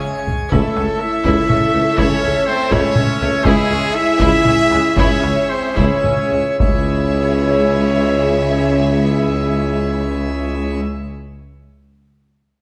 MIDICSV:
0, 0, Header, 1, 12, 480
1, 0, Start_track
1, 0, Key_signature, 4, "minor"
1, 0, Tempo, 488998
1, 519, Time_signature, 6, 3, 24, 8
1, 3880, Tempo, 515464
1, 5320, Tempo, 553506
1, 6280, Tempo, 573614
1, 11309, End_track
2, 0, Start_track
2, 0, Title_t, "Violin section"
2, 0, Program_c, 0, 48
2, 507, Note_on_c, 0, 76, 89
2, 3349, Note_off_c, 0, 76, 0
2, 3390, Note_on_c, 0, 76, 112
2, 6041, Note_off_c, 0, 76, 0
2, 6281, Note_on_c, 0, 76, 88
2, 9798, Note_off_c, 0, 76, 0
2, 11309, End_track
3, 0, Start_track
3, 0, Title_t, "Flute section"
3, 0, Program_c, 1, 73
3, 0, Note_on_c, 1, 73, 94
3, 256, Note_off_c, 1, 73, 0
3, 506, Note_on_c, 1, 69, 94
3, 957, Note_off_c, 1, 69, 0
3, 984, Note_on_c, 1, 76, 113
3, 1933, Note_on_c, 1, 73, 124
3, 1948, Note_off_c, 1, 76, 0
3, 2413, Note_off_c, 1, 73, 0
3, 2415, Note_on_c, 1, 72, 106
3, 2662, Note_on_c, 1, 73, 126
3, 2664, Note_off_c, 1, 72, 0
3, 3374, Note_off_c, 1, 73, 0
3, 3383, Note_on_c, 1, 68, 122
3, 3870, Note_on_c, 1, 76, 127
3, 3876, Note_off_c, 1, 68, 0
3, 4805, Note_off_c, 1, 76, 0
3, 4823, Note_on_c, 1, 73, 121
3, 5315, Note_on_c, 1, 72, 100
3, 5317, Note_off_c, 1, 73, 0
3, 5534, Note_on_c, 1, 73, 101
3, 5552, Note_off_c, 1, 72, 0
3, 6259, Note_off_c, 1, 73, 0
3, 6269, Note_on_c, 1, 73, 88
3, 9793, Note_off_c, 1, 73, 0
3, 11309, End_track
4, 0, Start_track
4, 0, Title_t, "Trumpet"
4, 0, Program_c, 2, 56
4, 0, Note_on_c, 2, 61, 90
4, 254, Note_off_c, 2, 61, 0
4, 508, Note_on_c, 2, 69, 101
4, 984, Note_on_c, 2, 76, 112
4, 999, Note_off_c, 2, 69, 0
4, 1944, Note_on_c, 2, 73, 119
4, 1958, Note_off_c, 2, 76, 0
4, 2416, Note_off_c, 2, 73, 0
4, 2421, Note_on_c, 2, 72, 116
4, 2664, Note_on_c, 2, 73, 114
4, 2678, Note_off_c, 2, 72, 0
4, 3383, Note_on_c, 2, 68, 118
4, 3398, Note_off_c, 2, 73, 0
4, 3876, Note_on_c, 2, 76, 127
4, 3890, Note_off_c, 2, 68, 0
4, 4822, Note_off_c, 2, 76, 0
4, 4828, Note_on_c, 2, 73, 113
4, 5315, Note_on_c, 2, 72, 98
4, 5328, Note_off_c, 2, 73, 0
4, 5552, Note_off_c, 2, 72, 0
4, 5557, Note_on_c, 2, 73, 90
4, 6267, Note_off_c, 2, 73, 0
4, 6278, Note_on_c, 2, 73, 88
4, 9797, Note_off_c, 2, 73, 0
4, 11309, End_track
5, 0, Start_track
5, 0, Title_t, "Violin section"
5, 0, Program_c, 3, 48
5, 0, Note_on_c, 3, 73, 93
5, 256, Note_off_c, 3, 73, 0
5, 511, Note_on_c, 3, 69, 91
5, 3351, Note_off_c, 3, 69, 0
5, 3395, Note_on_c, 3, 68, 108
5, 6044, Note_off_c, 3, 68, 0
5, 6285, Note_on_c, 3, 68, 89
5, 9800, Note_off_c, 3, 68, 0
5, 11309, End_track
6, 0, Start_track
6, 0, Title_t, "Pipe organ"
6, 0, Program_c, 4, 19
6, 0, Note_on_c, 4, 56, 99
6, 0, Note_on_c, 4, 68, 89
6, 0, Note_on_c, 4, 73, 97
6, 0, Note_on_c, 4, 80, 91
6, 477, Note_off_c, 4, 56, 0
6, 482, Note_off_c, 4, 68, 0
6, 495, Note_off_c, 4, 73, 0
6, 509, Note_on_c, 4, 64, 93
6, 513, Note_on_c, 4, 76, 91
6, 514, Note_off_c, 4, 80, 0
6, 514, Note_on_c, 4, 57, 87
6, 515, Note_on_c, 4, 73, 89
6, 3353, Note_off_c, 4, 57, 0
6, 3370, Note_on_c, 4, 56, 109
6, 6242, Note_off_c, 4, 64, 0
6, 6244, Note_off_c, 4, 73, 0
6, 6244, Note_off_c, 4, 76, 0
6, 6258, Note_off_c, 4, 56, 0
6, 6274, Note_on_c, 4, 64, 85
6, 6275, Note_on_c, 4, 76, 89
6, 6276, Note_on_c, 4, 56, 88
6, 6278, Note_on_c, 4, 73, 93
6, 9795, Note_off_c, 4, 64, 0
6, 9795, Note_off_c, 4, 76, 0
6, 9796, Note_off_c, 4, 56, 0
6, 9796, Note_off_c, 4, 73, 0
6, 11309, End_track
7, 0, Start_track
7, 0, Title_t, "French horn section"
7, 0, Program_c, 5, 60
7, 0, Note_on_c, 5, 61, 109
7, 269, Note_off_c, 5, 61, 0
7, 513, Note_on_c, 5, 57, 107
7, 961, Note_off_c, 5, 57, 0
7, 994, Note_on_c, 5, 64, 115
7, 1953, Note_off_c, 5, 64, 0
7, 1962, Note_on_c, 5, 61, 121
7, 2422, Note_on_c, 5, 60, 127
7, 2428, Note_off_c, 5, 61, 0
7, 2667, Note_off_c, 5, 60, 0
7, 2668, Note_on_c, 5, 61, 127
7, 3392, Note_off_c, 5, 61, 0
7, 3394, Note_on_c, 5, 56, 127
7, 3881, Note_off_c, 5, 56, 0
7, 3883, Note_on_c, 5, 64, 127
7, 4816, Note_on_c, 5, 61, 114
7, 4830, Note_off_c, 5, 64, 0
7, 5304, Note_off_c, 5, 61, 0
7, 5329, Note_on_c, 5, 60, 113
7, 5556, Note_on_c, 5, 61, 116
7, 5559, Note_off_c, 5, 60, 0
7, 6263, Note_off_c, 5, 61, 0
7, 6274, Note_on_c, 5, 61, 105
7, 9795, Note_off_c, 5, 61, 0
7, 11309, End_track
8, 0, Start_track
8, 0, Title_t, "Viola section"
8, 0, Program_c, 6, 48
8, 0, Note_on_c, 6, 76, 90
8, 154, Note_off_c, 6, 76, 0
8, 494, Note_on_c, 6, 64, 86
8, 728, Note_off_c, 6, 64, 0
8, 743, Note_on_c, 6, 61, 69
8, 822, Note_off_c, 6, 61, 0
8, 1231, Note_on_c, 6, 64, 103
8, 1453, Note_on_c, 6, 61, 83
8, 1456, Note_off_c, 6, 64, 0
8, 1531, Note_off_c, 6, 61, 0
8, 1696, Note_on_c, 6, 57, 84
8, 1775, Note_off_c, 6, 57, 0
8, 1932, Note_on_c, 6, 64, 95
8, 2166, Note_off_c, 6, 64, 0
8, 2174, Note_on_c, 6, 61, 71
8, 2253, Note_off_c, 6, 61, 0
8, 2658, Note_on_c, 6, 64, 102
8, 2888, Note_off_c, 6, 64, 0
8, 2911, Note_on_c, 6, 61, 88
8, 2989, Note_off_c, 6, 61, 0
8, 3153, Note_on_c, 6, 57, 99
8, 3232, Note_off_c, 6, 57, 0
8, 3381, Note_on_c, 6, 64, 123
8, 3613, Note_off_c, 6, 64, 0
8, 3638, Note_on_c, 6, 61, 84
8, 3717, Note_off_c, 6, 61, 0
8, 4110, Note_on_c, 6, 64, 120
8, 4331, Note_off_c, 6, 64, 0
8, 4346, Note_on_c, 6, 61, 83
8, 4420, Note_off_c, 6, 61, 0
8, 4601, Note_on_c, 6, 56, 98
8, 4676, Note_off_c, 6, 56, 0
8, 4832, Note_on_c, 6, 64, 115
8, 5058, Note_off_c, 6, 64, 0
8, 5058, Note_on_c, 6, 61, 66
8, 5133, Note_off_c, 6, 61, 0
8, 5538, Note_on_c, 6, 64, 96
8, 5767, Note_off_c, 6, 64, 0
8, 5784, Note_on_c, 6, 61, 68
8, 5854, Note_off_c, 6, 61, 0
8, 6032, Note_on_c, 6, 56, 66
8, 6101, Note_off_c, 6, 56, 0
8, 6270, Note_on_c, 6, 64, 81
8, 9793, Note_off_c, 6, 64, 0
8, 11309, End_track
9, 0, Start_track
9, 0, Title_t, "Cello section"
9, 0, Program_c, 7, 48
9, 0, Note_on_c, 7, 49, 91
9, 278, Note_off_c, 7, 49, 0
9, 516, Note_on_c, 7, 37, 100
9, 595, Note_off_c, 7, 37, 0
9, 753, Note_on_c, 7, 37, 67
9, 832, Note_off_c, 7, 37, 0
9, 1226, Note_on_c, 7, 37, 95
9, 1305, Note_off_c, 7, 37, 0
9, 1468, Note_on_c, 7, 37, 73
9, 1546, Note_off_c, 7, 37, 0
9, 1716, Note_on_c, 7, 37, 81
9, 1794, Note_off_c, 7, 37, 0
9, 1952, Note_on_c, 7, 37, 109
9, 2031, Note_off_c, 7, 37, 0
9, 2198, Note_on_c, 7, 37, 74
9, 2276, Note_off_c, 7, 37, 0
9, 2668, Note_on_c, 7, 37, 118
9, 2746, Note_off_c, 7, 37, 0
9, 2914, Note_on_c, 7, 37, 81
9, 2993, Note_off_c, 7, 37, 0
9, 3154, Note_on_c, 7, 37, 93
9, 3233, Note_off_c, 7, 37, 0
9, 3399, Note_on_c, 7, 37, 119
9, 3478, Note_off_c, 7, 37, 0
9, 3641, Note_on_c, 7, 37, 82
9, 3720, Note_off_c, 7, 37, 0
9, 4121, Note_on_c, 7, 37, 115
9, 4195, Note_off_c, 7, 37, 0
9, 4353, Note_on_c, 7, 37, 81
9, 4428, Note_off_c, 7, 37, 0
9, 4590, Note_on_c, 7, 37, 86
9, 4664, Note_off_c, 7, 37, 0
9, 4829, Note_on_c, 7, 37, 108
9, 4903, Note_off_c, 7, 37, 0
9, 5074, Note_on_c, 7, 37, 67
9, 5149, Note_off_c, 7, 37, 0
9, 5558, Note_on_c, 7, 37, 96
9, 5627, Note_off_c, 7, 37, 0
9, 5788, Note_on_c, 7, 37, 67
9, 5858, Note_off_c, 7, 37, 0
9, 6034, Note_on_c, 7, 37, 68
9, 6103, Note_off_c, 7, 37, 0
9, 6282, Note_on_c, 7, 37, 96
9, 9799, Note_off_c, 7, 37, 0
9, 11309, End_track
10, 0, Start_track
10, 0, Title_t, "Double bass section"
10, 0, Program_c, 8, 48
10, 508, Note_on_c, 8, 37, 93
10, 587, Note_off_c, 8, 37, 0
10, 748, Note_on_c, 8, 37, 74
10, 826, Note_off_c, 8, 37, 0
10, 1229, Note_on_c, 8, 37, 99
10, 1308, Note_off_c, 8, 37, 0
10, 1470, Note_on_c, 8, 37, 75
10, 1548, Note_off_c, 8, 37, 0
10, 1717, Note_on_c, 8, 37, 74
10, 1796, Note_off_c, 8, 37, 0
10, 1954, Note_on_c, 8, 37, 101
10, 2032, Note_off_c, 8, 37, 0
10, 2201, Note_on_c, 8, 37, 83
10, 2280, Note_off_c, 8, 37, 0
10, 2675, Note_on_c, 8, 37, 119
10, 2754, Note_off_c, 8, 37, 0
10, 2907, Note_on_c, 8, 37, 83
10, 2985, Note_off_c, 8, 37, 0
10, 3152, Note_on_c, 8, 37, 87
10, 3230, Note_off_c, 8, 37, 0
10, 3387, Note_on_c, 8, 37, 117
10, 3466, Note_off_c, 8, 37, 0
10, 3631, Note_on_c, 8, 37, 91
10, 3710, Note_off_c, 8, 37, 0
10, 4114, Note_on_c, 8, 37, 114
10, 4189, Note_off_c, 8, 37, 0
10, 4349, Note_on_c, 8, 37, 80
10, 4424, Note_off_c, 8, 37, 0
10, 4589, Note_on_c, 8, 37, 80
10, 4664, Note_off_c, 8, 37, 0
10, 4832, Note_on_c, 8, 37, 102
10, 4906, Note_off_c, 8, 37, 0
10, 5081, Note_on_c, 8, 37, 79
10, 5155, Note_off_c, 8, 37, 0
10, 5556, Note_on_c, 8, 37, 94
10, 5626, Note_off_c, 8, 37, 0
10, 5799, Note_on_c, 8, 37, 66
10, 5868, Note_off_c, 8, 37, 0
10, 6037, Note_on_c, 8, 37, 62
10, 6106, Note_off_c, 8, 37, 0
10, 6291, Note_on_c, 8, 37, 88
10, 9803, Note_off_c, 8, 37, 0
10, 11309, End_track
11, 0, Start_track
11, 0, Title_t, "Tuba"
11, 0, Program_c, 10, 58
11, 513, Note_on_c, 10, 37, 93
11, 610, Note_off_c, 10, 37, 0
11, 751, Note_on_c, 10, 37, 66
11, 848, Note_off_c, 10, 37, 0
11, 1230, Note_on_c, 10, 37, 102
11, 1327, Note_off_c, 10, 37, 0
11, 1472, Note_on_c, 10, 37, 70
11, 1568, Note_off_c, 10, 37, 0
11, 1711, Note_on_c, 10, 37, 77
11, 1808, Note_off_c, 10, 37, 0
11, 1946, Note_on_c, 10, 37, 105
11, 2043, Note_off_c, 10, 37, 0
11, 2180, Note_on_c, 10, 37, 75
11, 2279, Note_off_c, 10, 37, 0
11, 2660, Note_on_c, 10, 37, 126
11, 2758, Note_off_c, 10, 37, 0
11, 2897, Note_on_c, 10, 37, 75
11, 2996, Note_off_c, 10, 37, 0
11, 3149, Note_on_c, 10, 37, 80
11, 3246, Note_off_c, 10, 37, 0
11, 3388, Note_on_c, 10, 37, 110
11, 3486, Note_off_c, 10, 37, 0
11, 3631, Note_on_c, 10, 37, 80
11, 3730, Note_off_c, 10, 37, 0
11, 4111, Note_on_c, 10, 37, 121
11, 4206, Note_off_c, 10, 37, 0
11, 4347, Note_on_c, 10, 37, 78
11, 4443, Note_off_c, 10, 37, 0
11, 4582, Note_on_c, 10, 37, 78
11, 4679, Note_off_c, 10, 37, 0
11, 4831, Note_on_c, 10, 37, 103
11, 4928, Note_off_c, 10, 37, 0
11, 5075, Note_on_c, 10, 37, 72
11, 5174, Note_off_c, 10, 37, 0
11, 5559, Note_on_c, 10, 37, 98
11, 5653, Note_off_c, 10, 37, 0
11, 5795, Note_on_c, 10, 37, 65
11, 5891, Note_off_c, 10, 37, 0
11, 6038, Note_on_c, 10, 37, 65
11, 6136, Note_off_c, 10, 37, 0
11, 6285, Note_on_c, 10, 37, 84
11, 9800, Note_off_c, 10, 37, 0
11, 11309, End_track
12, 0, Start_track
12, 0, Title_t, "Taiko and cinematic ensemble drums"
12, 273, Note_on_c, 9, 43, 60
12, 371, Note_off_c, 9, 43, 0
12, 512, Note_on_c, 9, 41, 109
12, 610, Note_off_c, 9, 41, 0
12, 754, Note_on_c, 9, 37, 47
12, 853, Note_off_c, 9, 37, 0
12, 1228, Note_on_c, 9, 41, 90
12, 1326, Note_off_c, 9, 41, 0
12, 1470, Note_on_c, 9, 47, 69
12, 1568, Note_off_c, 9, 47, 0
12, 1944, Note_on_c, 9, 41, 114
12, 2043, Note_off_c, 9, 41, 0
12, 2666, Note_on_c, 9, 41, 95
12, 2764, Note_off_c, 9, 41, 0
12, 2902, Note_on_c, 9, 47, 75
12, 3000, Note_off_c, 9, 47, 0
12, 3386, Note_on_c, 9, 41, 116
12, 3485, Note_off_c, 9, 41, 0
12, 4107, Note_on_c, 9, 41, 93
12, 4200, Note_off_c, 9, 41, 0
12, 4345, Note_on_c, 9, 47, 71
12, 4438, Note_off_c, 9, 47, 0
12, 4587, Note_on_c, 9, 37, 46
12, 4680, Note_off_c, 9, 37, 0
12, 4828, Note_on_c, 9, 41, 121
12, 4921, Note_off_c, 9, 41, 0
12, 5074, Note_on_c, 9, 37, 46
12, 5167, Note_off_c, 9, 37, 0
12, 5555, Note_on_c, 9, 41, 88
12, 5642, Note_off_c, 9, 41, 0
12, 5790, Note_on_c, 9, 47, 71
12, 5877, Note_off_c, 9, 47, 0
12, 6275, Note_on_c, 9, 41, 116
12, 6359, Note_off_c, 9, 41, 0
12, 11309, End_track
0, 0, End_of_file